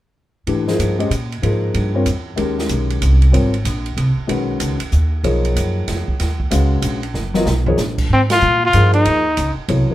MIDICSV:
0, 0, Header, 1, 6, 480
1, 0, Start_track
1, 0, Tempo, 317797
1, 713, Time_signature, 3, 2, 24, 8
1, 15021, End_track
2, 0, Start_track
2, 0, Title_t, "Trumpet"
2, 0, Program_c, 0, 56
2, 12278, Note_on_c, 0, 60, 79
2, 12406, Note_off_c, 0, 60, 0
2, 12565, Note_on_c, 0, 65, 96
2, 12999, Note_off_c, 0, 65, 0
2, 13072, Note_on_c, 0, 65, 87
2, 13493, Note_off_c, 0, 65, 0
2, 13508, Note_on_c, 0, 63, 79
2, 14402, Note_off_c, 0, 63, 0
2, 15021, End_track
3, 0, Start_track
3, 0, Title_t, "Grand piano"
3, 0, Program_c, 1, 0
3, 712, Note_on_c, 1, 52, 49
3, 721, Note_on_c, 1, 57, 42
3, 723, Note_on_c, 1, 62, 41
3, 725, Note_on_c, 1, 67, 44
3, 735, Note_on_c, 1, 71, 46
3, 988, Note_off_c, 1, 52, 0
3, 993, Note_off_c, 1, 57, 0
3, 993, Note_off_c, 1, 62, 0
3, 994, Note_off_c, 1, 67, 0
3, 1000, Note_off_c, 1, 71, 0
3, 1012, Note_on_c, 1, 53, 52
3, 1020, Note_on_c, 1, 58, 47
3, 1025, Note_on_c, 1, 63, 48
3, 1028, Note_on_c, 1, 68, 49
3, 1031, Note_on_c, 1, 72, 55
3, 1434, Note_off_c, 1, 53, 0
3, 1438, Note_off_c, 1, 58, 0
3, 1441, Note_off_c, 1, 63, 0
3, 1442, Note_off_c, 1, 68, 0
3, 1444, Note_off_c, 1, 72, 0
3, 1492, Note_on_c, 1, 61, 50
3, 1496, Note_on_c, 1, 56, 50
3, 1496, Note_on_c, 1, 72, 51
3, 1499, Note_on_c, 1, 67, 48
3, 1500, Note_on_c, 1, 75, 59
3, 1652, Note_off_c, 1, 61, 0
3, 1654, Note_off_c, 1, 56, 0
3, 1654, Note_off_c, 1, 72, 0
3, 1656, Note_off_c, 1, 67, 0
3, 1656, Note_off_c, 1, 75, 0
3, 2147, Note_on_c, 1, 53, 47
3, 2154, Note_on_c, 1, 63, 42
3, 2157, Note_on_c, 1, 58, 41
3, 2161, Note_on_c, 1, 72, 50
3, 2165, Note_on_c, 1, 68, 43
3, 2875, Note_off_c, 1, 53, 0
3, 2879, Note_off_c, 1, 63, 0
3, 2880, Note_off_c, 1, 58, 0
3, 2882, Note_off_c, 1, 72, 0
3, 2884, Note_off_c, 1, 68, 0
3, 2934, Note_on_c, 1, 55, 52
3, 2944, Note_on_c, 1, 60, 48
3, 2945, Note_on_c, 1, 65, 50
3, 2953, Note_on_c, 1, 70, 51
3, 2956, Note_on_c, 1, 73, 59
3, 3093, Note_off_c, 1, 55, 0
3, 3098, Note_off_c, 1, 60, 0
3, 3098, Note_off_c, 1, 65, 0
3, 3103, Note_off_c, 1, 70, 0
3, 3104, Note_off_c, 1, 73, 0
3, 3567, Note_on_c, 1, 56, 45
3, 3568, Note_on_c, 1, 51, 51
3, 3578, Note_on_c, 1, 61, 44
3, 3583, Note_on_c, 1, 67, 45
3, 3583, Note_on_c, 1, 70, 55
3, 4915, Note_off_c, 1, 56, 0
3, 4916, Note_off_c, 1, 51, 0
3, 4921, Note_off_c, 1, 61, 0
3, 4923, Note_off_c, 1, 67, 0
3, 4923, Note_off_c, 1, 70, 0
3, 5011, Note_on_c, 1, 55, 46
3, 5014, Note_on_c, 1, 60, 44
3, 5017, Note_on_c, 1, 65, 41
3, 5026, Note_on_c, 1, 70, 42
3, 5032, Note_on_c, 1, 73, 52
3, 5297, Note_off_c, 1, 55, 0
3, 5299, Note_off_c, 1, 60, 0
3, 5300, Note_off_c, 1, 65, 0
3, 5305, Note_off_c, 1, 70, 0
3, 5308, Note_off_c, 1, 73, 0
3, 6453, Note_on_c, 1, 51, 55
3, 6461, Note_on_c, 1, 56, 46
3, 6462, Note_on_c, 1, 61, 50
3, 6462, Note_on_c, 1, 66, 49
3, 6475, Note_on_c, 1, 71, 57
3, 7187, Note_off_c, 1, 51, 0
3, 7192, Note_off_c, 1, 56, 0
3, 7192, Note_off_c, 1, 61, 0
3, 7192, Note_off_c, 1, 66, 0
3, 7198, Note_off_c, 1, 71, 0
3, 7910, Note_on_c, 1, 53, 46
3, 7914, Note_on_c, 1, 58, 47
3, 7921, Note_on_c, 1, 63, 42
3, 7922, Note_on_c, 1, 68, 43
3, 7923, Note_on_c, 1, 73, 58
3, 9247, Note_off_c, 1, 53, 0
3, 9249, Note_off_c, 1, 58, 0
3, 9252, Note_off_c, 1, 63, 0
3, 9253, Note_off_c, 1, 68, 0
3, 9253, Note_off_c, 1, 73, 0
3, 9828, Note_on_c, 1, 61, 52
3, 9829, Note_on_c, 1, 56, 55
3, 9834, Note_on_c, 1, 66, 48
3, 9838, Note_on_c, 1, 71, 52
3, 9840, Note_on_c, 1, 77, 54
3, 10555, Note_off_c, 1, 61, 0
3, 10556, Note_off_c, 1, 56, 0
3, 10558, Note_off_c, 1, 66, 0
3, 10560, Note_off_c, 1, 71, 0
3, 10561, Note_off_c, 1, 77, 0
3, 11089, Note_on_c, 1, 54, 67
3, 11104, Note_on_c, 1, 70, 58
3, 11107, Note_on_c, 1, 59, 58
3, 11108, Note_on_c, 1, 65, 59
3, 11111, Note_on_c, 1, 75, 67
3, 11250, Note_off_c, 1, 54, 0
3, 11258, Note_off_c, 1, 70, 0
3, 11259, Note_off_c, 1, 59, 0
3, 11260, Note_off_c, 1, 65, 0
3, 11261, Note_off_c, 1, 75, 0
3, 11582, Note_on_c, 1, 53, 54
3, 11592, Note_on_c, 1, 58, 49
3, 11597, Note_on_c, 1, 63, 52
3, 11603, Note_on_c, 1, 68, 54
3, 11603, Note_on_c, 1, 73, 63
3, 11737, Note_off_c, 1, 53, 0
3, 11741, Note_off_c, 1, 58, 0
3, 11744, Note_off_c, 1, 63, 0
3, 11747, Note_off_c, 1, 68, 0
3, 11747, Note_off_c, 1, 73, 0
3, 13206, Note_on_c, 1, 53, 49
3, 13212, Note_on_c, 1, 58, 47
3, 13219, Note_on_c, 1, 63, 51
3, 13220, Note_on_c, 1, 68, 49
3, 13224, Note_on_c, 1, 72, 59
3, 13923, Note_off_c, 1, 53, 0
3, 13926, Note_off_c, 1, 58, 0
3, 13930, Note_off_c, 1, 63, 0
3, 13930, Note_off_c, 1, 68, 0
3, 13932, Note_off_c, 1, 72, 0
3, 14626, Note_on_c, 1, 54, 41
3, 14632, Note_on_c, 1, 59, 37
3, 14642, Note_on_c, 1, 64, 41
3, 14644, Note_on_c, 1, 73, 50
3, 14645, Note_on_c, 1, 69, 38
3, 14904, Note_off_c, 1, 54, 0
3, 14907, Note_off_c, 1, 59, 0
3, 14912, Note_off_c, 1, 64, 0
3, 14913, Note_off_c, 1, 69, 0
3, 14913, Note_off_c, 1, 73, 0
3, 14949, Note_on_c, 1, 53, 41
3, 14954, Note_on_c, 1, 58, 40
3, 14956, Note_on_c, 1, 63, 40
3, 14965, Note_on_c, 1, 68, 43
3, 14967, Note_on_c, 1, 72, 50
3, 15021, Note_off_c, 1, 53, 0
3, 15021, Note_off_c, 1, 58, 0
3, 15021, Note_off_c, 1, 63, 0
3, 15021, Note_off_c, 1, 68, 0
3, 15021, Note_off_c, 1, 72, 0
3, 15021, End_track
4, 0, Start_track
4, 0, Title_t, "Upright bass"
4, 0, Program_c, 2, 32
4, 708, Note_on_c, 2, 44, 62
4, 1176, Note_off_c, 2, 44, 0
4, 1189, Note_on_c, 2, 43, 77
4, 1657, Note_off_c, 2, 43, 0
4, 1664, Note_on_c, 2, 46, 74
4, 2134, Note_off_c, 2, 46, 0
4, 2152, Note_on_c, 2, 44, 70
4, 2618, Note_off_c, 2, 44, 0
4, 2630, Note_on_c, 2, 43, 79
4, 3097, Note_off_c, 2, 43, 0
4, 3105, Note_on_c, 2, 40, 71
4, 3574, Note_off_c, 2, 40, 0
4, 3592, Note_on_c, 2, 39, 67
4, 4058, Note_off_c, 2, 39, 0
4, 4069, Note_on_c, 2, 35, 73
4, 4536, Note_off_c, 2, 35, 0
4, 4558, Note_on_c, 2, 36, 78
4, 5021, Note_off_c, 2, 36, 0
4, 5029, Note_on_c, 2, 32, 65
4, 5496, Note_off_c, 2, 32, 0
4, 5509, Note_on_c, 2, 34, 77
4, 5976, Note_off_c, 2, 34, 0
4, 5991, Note_on_c, 2, 36, 74
4, 6277, Note_off_c, 2, 36, 0
4, 6464, Note_on_c, 2, 35, 64
4, 6933, Note_off_c, 2, 35, 0
4, 6953, Note_on_c, 2, 37, 76
4, 7238, Note_off_c, 2, 37, 0
4, 7430, Note_on_c, 2, 39, 79
4, 7897, Note_off_c, 2, 39, 0
4, 7906, Note_on_c, 2, 35, 72
4, 8375, Note_off_c, 2, 35, 0
4, 8393, Note_on_c, 2, 42, 73
4, 8858, Note_off_c, 2, 42, 0
4, 8875, Note_on_c, 2, 41, 72
4, 9158, Note_off_c, 2, 41, 0
4, 9358, Note_on_c, 2, 39, 62
4, 9821, Note_off_c, 2, 39, 0
4, 9833, Note_on_c, 2, 37, 87
4, 10293, Note_off_c, 2, 37, 0
4, 10302, Note_on_c, 2, 34, 78
4, 10773, Note_off_c, 2, 34, 0
4, 10786, Note_on_c, 2, 30, 72
4, 11255, Note_off_c, 2, 30, 0
4, 11263, Note_on_c, 2, 35, 79
4, 11730, Note_off_c, 2, 35, 0
4, 11739, Note_on_c, 2, 34, 76
4, 12211, Note_off_c, 2, 34, 0
4, 12223, Note_on_c, 2, 44, 67
4, 12693, Note_off_c, 2, 44, 0
4, 12713, Note_on_c, 2, 46, 79
4, 13177, Note_off_c, 2, 46, 0
4, 13191, Note_on_c, 2, 43, 84
4, 13657, Note_off_c, 2, 43, 0
4, 13676, Note_on_c, 2, 39, 67
4, 14139, Note_off_c, 2, 39, 0
4, 14159, Note_on_c, 2, 37, 85
4, 14440, Note_off_c, 2, 37, 0
4, 14628, Note_on_c, 2, 36, 84
4, 14914, Note_off_c, 2, 36, 0
4, 15021, End_track
5, 0, Start_track
5, 0, Title_t, "Muted upright bass strokes"
5, 6294, Note_on_c, 9, 29, 32
5, 6445, Note_off_c, 9, 29, 0
5, 7265, Note_on_c, 9, 29, 31
5, 7417, Note_off_c, 9, 29, 0
5, 9185, Note_on_c, 9, 29, 33
5, 9336, Note_off_c, 9, 29, 0
5, 14456, Note_on_c, 9, 29, 32
5, 14607, Note_off_c, 9, 29, 0
5, 14931, Note_on_c, 9, 29, 35
5, 15021, Note_off_c, 9, 29, 0
5, 15021, End_track
6, 0, Start_track
6, 0, Title_t, "Drums"
6, 711, Note_on_c, 9, 51, 42
6, 862, Note_off_c, 9, 51, 0
6, 1024, Note_on_c, 9, 38, 41
6, 1175, Note_off_c, 9, 38, 0
6, 1204, Note_on_c, 9, 44, 47
6, 1204, Note_on_c, 9, 51, 55
6, 1355, Note_off_c, 9, 44, 0
6, 1355, Note_off_c, 9, 51, 0
6, 1513, Note_on_c, 9, 51, 34
6, 1664, Note_off_c, 9, 51, 0
6, 1681, Note_on_c, 9, 44, 50
6, 1681, Note_on_c, 9, 51, 51
6, 1832, Note_off_c, 9, 44, 0
6, 1832, Note_off_c, 9, 51, 0
6, 1998, Note_on_c, 9, 51, 32
6, 2149, Note_off_c, 9, 51, 0
6, 2164, Note_on_c, 9, 51, 46
6, 2315, Note_off_c, 9, 51, 0
6, 2635, Note_on_c, 9, 51, 47
6, 2786, Note_off_c, 9, 51, 0
6, 3109, Note_on_c, 9, 44, 51
6, 3109, Note_on_c, 9, 51, 52
6, 3260, Note_off_c, 9, 44, 0
6, 3260, Note_off_c, 9, 51, 0
6, 3586, Note_on_c, 9, 51, 47
6, 3737, Note_off_c, 9, 51, 0
6, 3910, Note_on_c, 9, 38, 45
6, 4061, Note_off_c, 9, 38, 0
6, 4067, Note_on_c, 9, 44, 52
6, 4067, Note_on_c, 9, 51, 49
6, 4218, Note_off_c, 9, 44, 0
6, 4218, Note_off_c, 9, 51, 0
6, 4385, Note_on_c, 9, 51, 36
6, 4536, Note_off_c, 9, 51, 0
6, 4557, Note_on_c, 9, 44, 50
6, 4557, Note_on_c, 9, 51, 57
6, 4708, Note_off_c, 9, 44, 0
6, 4708, Note_off_c, 9, 51, 0
6, 4860, Note_on_c, 9, 51, 37
6, 5012, Note_off_c, 9, 51, 0
6, 5045, Note_on_c, 9, 51, 52
6, 5196, Note_off_c, 9, 51, 0
6, 5342, Note_on_c, 9, 51, 36
6, 5493, Note_off_c, 9, 51, 0
6, 5516, Note_on_c, 9, 44, 54
6, 5516, Note_on_c, 9, 51, 58
6, 5667, Note_off_c, 9, 44, 0
6, 5667, Note_off_c, 9, 51, 0
6, 5826, Note_on_c, 9, 51, 34
6, 5977, Note_off_c, 9, 51, 0
6, 6003, Note_on_c, 9, 51, 54
6, 6154, Note_off_c, 9, 51, 0
6, 6481, Note_on_c, 9, 51, 50
6, 6632, Note_off_c, 9, 51, 0
6, 6946, Note_on_c, 9, 44, 56
6, 6946, Note_on_c, 9, 51, 58
6, 7098, Note_off_c, 9, 44, 0
6, 7098, Note_off_c, 9, 51, 0
6, 7249, Note_on_c, 9, 51, 54
6, 7400, Note_off_c, 9, 51, 0
6, 7429, Note_on_c, 9, 44, 52
6, 7580, Note_off_c, 9, 44, 0
6, 7917, Note_on_c, 9, 51, 46
6, 8068, Note_off_c, 9, 51, 0
6, 8228, Note_on_c, 9, 51, 37
6, 8379, Note_off_c, 9, 51, 0
6, 8405, Note_on_c, 9, 44, 55
6, 8405, Note_on_c, 9, 51, 55
6, 8556, Note_off_c, 9, 44, 0
6, 8556, Note_off_c, 9, 51, 0
6, 8878, Note_on_c, 9, 51, 50
6, 8882, Note_on_c, 9, 38, 34
6, 9029, Note_off_c, 9, 51, 0
6, 9033, Note_off_c, 9, 38, 0
6, 9184, Note_on_c, 9, 36, 39
6, 9335, Note_off_c, 9, 36, 0
6, 9359, Note_on_c, 9, 51, 50
6, 9364, Note_on_c, 9, 38, 32
6, 9510, Note_off_c, 9, 51, 0
6, 9515, Note_off_c, 9, 38, 0
6, 9663, Note_on_c, 9, 36, 43
6, 9814, Note_off_c, 9, 36, 0
6, 9838, Note_on_c, 9, 44, 58
6, 9838, Note_on_c, 9, 51, 59
6, 9989, Note_off_c, 9, 44, 0
6, 9989, Note_off_c, 9, 51, 0
6, 10306, Note_on_c, 9, 44, 54
6, 10306, Note_on_c, 9, 51, 63
6, 10457, Note_off_c, 9, 44, 0
6, 10457, Note_off_c, 9, 51, 0
6, 10619, Note_on_c, 9, 51, 35
6, 10770, Note_off_c, 9, 51, 0
6, 10790, Note_on_c, 9, 38, 38
6, 10941, Note_off_c, 9, 38, 0
6, 11091, Note_on_c, 9, 38, 46
6, 11242, Note_off_c, 9, 38, 0
6, 11269, Note_on_c, 9, 44, 48
6, 11273, Note_on_c, 9, 38, 62
6, 11420, Note_off_c, 9, 44, 0
6, 11425, Note_off_c, 9, 38, 0
6, 11576, Note_on_c, 9, 43, 55
6, 11727, Note_off_c, 9, 43, 0
6, 11743, Note_on_c, 9, 44, 58
6, 11748, Note_on_c, 9, 38, 50
6, 11894, Note_off_c, 9, 44, 0
6, 11899, Note_off_c, 9, 38, 0
6, 12055, Note_on_c, 9, 36, 57
6, 12058, Note_on_c, 9, 49, 58
6, 12206, Note_off_c, 9, 36, 0
6, 12209, Note_off_c, 9, 49, 0
6, 12534, Note_on_c, 9, 51, 58
6, 12539, Note_on_c, 9, 38, 72
6, 12685, Note_off_c, 9, 51, 0
6, 12690, Note_off_c, 9, 38, 0
6, 12697, Note_on_c, 9, 44, 50
6, 12849, Note_off_c, 9, 44, 0
6, 13188, Note_on_c, 9, 44, 53
6, 13188, Note_on_c, 9, 51, 61
6, 13339, Note_off_c, 9, 44, 0
6, 13339, Note_off_c, 9, 51, 0
6, 13495, Note_on_c, 9, 51, 37
6, 13646, Note_off_c, 9, 51, 0
6, 13676, Note_on_c, 9, 51, 56
6, 13827, Note_off_c, 9, 51, 0
6, 14152, Note_on_c, 9, 44, 53
6, 14152, Note_on_c, 9, 51, 60
6, 14303, Note_off_c, 9, 44, 0
6, 14303, Note_off_c, 9, 51, 0
6, 14629, Note_on_c, 9, 51, 52
6, 14780, Note_off_c, 9, 51, 0
6, 15021, End_track
0, 0, End_of_file